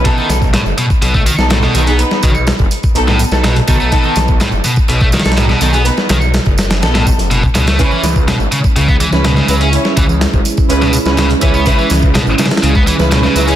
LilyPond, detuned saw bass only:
\new Staff \with { instrumentName = "Detuned saw bass" } { \clef bass \time 4/4 \key b \mixolydian \tempo 4 = 124 r8 b,,8 r16 fis,,16 r8 b,,8 r16 b,,8 r16 b,,8 | r8 b,,8 r16 fis,,16 r8 b,,8 r16 b,,8 r16 b,,8 | r8 b,,8 r16 fis,,16 r8 b,,8 r16 b,,8 r16 b,,8 | r8 b,,8 r16 fis,,8. b,,8 r16 fis,,8 r16 cis,8 |
r8 cis,8 r16 gis,,16 r8 cis,8 r16 cis,8 r16 cis,8 | r8 cis,8 r16 gis,,16 r8 cis,8 r16 cis,8 r16 cis,8 | r8 cis,8 r16 gis,,16 r8 cis,8 r16 cis,8 r16 cis,8 | }